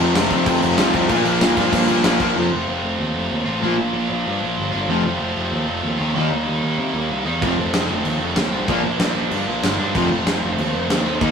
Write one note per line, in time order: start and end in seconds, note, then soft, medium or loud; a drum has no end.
0.00 0.13 F2 medium
0.00 0.15 F2 medium
0.00 0.14 C3 medium
0.00 0.15 F3 medium
0.00 0.13 A3 medium
0.00 0.13 C4 medium
0.14 0.29 F1 loud
0.14 0.29 F2 medium
0.14 0.30 C3 loud
0.14 0.31 F3 loud
0.14 0.31 A3 loud
0.14 0.31 C4 loud
0.14 snare loud
0.14 crash medium
0.30 0.44 F1 loud
0.30 0.47 F2 medium
0.30 0.47 C3 loud
0.30 0.47 F3 medium
0.30 0.45 A3 medium
0.30 0.45 C4 loud
0.30 kick medium
0.30 crash medium
0.46 0.60 F2 medium
0.46 0.61 C3 medium
0.46 0.62 F3 medium
0.46 0.62 A3 medium
0.46 0.62 C4 loud
0.46 kick loud
0.46 crash loud
0.61 0.76 F1 medium
0.61 0.78 F2 medium
0.61 0.78 C3 medium
0.61 0.78 F3 loud
0.61 0.77 A3 medium
0.61 0.76 C4 medium
0.61 crash medium
0.77 0.92 C2 medium
0.77 0.92 F2 medium
0.77 0.92 C3 loud
0.77 0.93 F3 loud
0.77 0.93 A3 loud
0.77 0.93 C4 loud
0.77 snare loud
0.77 crash medium
0.93 1.08 C2 loud
0.93 1.08 F2 medium
0.93 1.08 C3 medium
0.93 1.09 F3 loud
0.93 1.09 A3 loud
0.93 1.09 C4 loud
0.93 kick medium
0.93 crash medium
1.09 1.23 A#1 loud
1.09 1.25 A#2 medium
1.09 1.24 F3 loud
1.09 1.23 A#3 loud
1.09 1.23 D4 loud
1.09 kick loud
1.09 crash medium
1.24 1.39 A#1 medium
1.24 1.39 A#2 medium
1.24 1.40 F3 medium
1.24 1.40 A#3 medium
1.24 1.41 D4 medium
1.24 crash medium
1.40 1.55 A#1 loud
1.40 1.56 A#2 loud
1.40 1.56 F3 loud
1.40 1.56 A#3 loud
1.40 1.55 D4 loud
1.40 snare loud
1.40 crash loud
1.56 1.70 G2 medium
1.56 1.70 A#2 medium
1.56 1.71 F3 medium
1.56 1.72 A#3 medium
1.56 1.73 D4 medium
1.56 kick medium
1.56 crash medium
1.71 1.86 G2 loud
1.71 1.88 A#2 medium
1.71 1.88 F3 loud
1.71 1.87 A#3 loud
1.71 1.86 D4 loud
1.71 kick loud
1.71 crash loud
1.87 2.02 G2 loud
1.87 2.02 A#2 medium
1.87 2.03 F3 medium
1.87 2.03 A#3 loud
1.87 2.04 D4 loud
1.87 crash medium
2.03 2.31 A#1 loud
2.03 2.21 A#2 loud
2.03 2.20 F3 medium
2.03 2.19 A#3 loud
2.03 2.18 D4 loud
2.03 snare loud
2.03 crash loud
2.20 2.35 A#2 medium
2.20 2.35 F3 medium
2.20 2.35 A#3 medium
2.20 2.35 D4 loud
2.20 kick medium
2.20 crash medium
2.35 2.49 F1 medium
2.35 3.45 F2 medium
2.35 3.45 C3 medium
2.35 3.47 F3 medium
2.35 3.46 A3 medium
2.35 3.45 C4 medium
2.39 3.45 F4 loud
2.53 2.66 F1 medium
2.68 2.82 F1 medium
2.83 2.97 F1 medium
2.99 3.13 D#2 loud
3.14 3.28 F1 medium
3.31 3.45 D#2 medium
3.45 3.60 A1 medium
3.45 3.62 F2 medium
3.45 3.60 C3 medium
3.45 3.61 F3 medium
3.45 3.62 A3 medium
3.45 3.61 C4 medium
3.45 3.63 F4 medium
3.60 3.76 A#1 medium
3.60 4.71 A#2 loud
3.60 4.72 F3 medium
3.60 4.72 A#3 medium
3.60 4.72 D4 loud
3.60 4.70 F4 medium
3.79 3.92 A#1 medium
3.94 4.08 A#1 medium
4.10 4.24 A#1 medium
4.27 4.40 G2 loud
4.43 4.56 A#1 medium
4.58 4.71 G1 medium
4.72 4.87 G1 medium
4.72 4.88 A#2 medium
4.72 4.88 F3 medium
4.72 4.88 A#3 medium
4.72 4.88 D4 medium
4.72 4.87 F4 medium
4.87 5.03 F1 medium
4.87 5.98 F2 medium
4.87 5.98 C3 medium
4.87 5.99 F3 medium
4.87 5.99 A3 loud
4.87 5.98 C4 loud
4.87 5.97 F4 loud
5.04 5.18 F1 medium
5.20 5.34 F1 loud
5.37 5.50 F1 medium
5.52 5.66 D#2 loud
5.68 5.82 F1 loud
5.83 5.97 D#2 medium
5.99 6.13 D#2 loud
5.99 6.16 F2 medium
5.99 6.13 C3 medium
5.99 6.14 F3 medium
5.99 6.15 A3 medium
5.99 6.14 C4 medium
5.99 6.14 F4 loud
6.14 6.29 D#2 medium
6.14 7.24 D#3 medium
6.14 7.25 G3 medium
6.14 7.26 A#3 medium
6.14 7.24 D#4 medium
6.32 6.46 D#2 medium
6.48 6.61 D#2 medium
6.63 6.77 D#2 medium
6.78 6.92 C3 medium
6.94 7.08 D#2 medium
7.10 7.24 C2 medium
7.25 7.40 E2 medium
7.25 7.41 D#3 medium
7.25 7.42 G3 medium
7.25 7.41 A#3 medium
7.25 7.41 D#4 medium
7.41 7.56 F1 medium
7.41 8.51 F2 medium
7.41 8.52 C3 medium
7.41 8.53 F3 loud
7.41 8.52 A3 loud
7.41 8.50 C4 loud
7.41 kick loud
7.41 crash medium
7.57 7.71 F1 medium
7.73 7.88 F1 loud
7.73 snare loud
7.73 crash medium
7.90 8.04 F1 medium
8.05 8.19 D#2 loud
8.05 crash medium
8.20 8.34 F1 medium
8.36 8.50 D#2 medium
8.36 snare loud
8.36 crash medium
8.51 8.67 C2 medium
8.51 8.69 F2 medium
8.51 8.67 C3 medium
8.51 8.68 F3 medium
8.51 8.68 A3 medium
8.51 8.67 C4 medium
8.67 8.82 A#1 medium
8.67 9.77 A#2 medium
8.67 9.78 F3 loud
8.67 9.79 A#3 medium
8.67 9.77 D4 medium
8.67 kick loud
8.67 crash medium
8.83 8.97 A#1 medium
8.99 9.14 A#1 loud
8.99 snare loud
8.99 crash medium
9.15 9.29 A#1 medium
9.31 9.45 G2 medium
9.31 crash medium
9.47 9.61 A#1 medium
9.63 9.77 G1 medium
9.63 snare loud
9.63 crash medium
9.78 9.93 G2 medium
9.78 9.94 F3 medium
9.78 9.94 A#3 medium
9.78 9.93 D4 loud
9.82 9.94 A#2 medium
9.94 10.09 F1 medium
9.94 11.04 F2 medium
9.94 11.05 C3 medium
9.94 11.05 F3 loud
9.94 11.04 A3 medium
9.94 11.03 C4 medium
9.94 kick loud
9.94 crash medium
10.10 10.24 F1 medium
10.27 10.41 F1 loud
10.27 snare loud
10.27 crash medium
10.43 10.56 F1 medium
10.58 10.72 D#2 loud
10.58 crash medium
10.73 10.87 F1 medium
10.89 11.03 D#2 medium
10.89 snare loud
10.89 crash medium
11.05 11.19 D#2 medium
11.05 11.22 F2 medium
11.05 11.20 C3 medium
11.05 11.21 F3 medium
11.05 11.20 A3 medium
11.05 11.20 C4 medium
11.21 11.31 D#2 loud
11.21 11.31 D#3 medium
11.21 11.31 G3 loud
11.21 11.31 A#3 loud
11.21 11.31 D#4 medium
11.21 kick loud
11.21 crash medium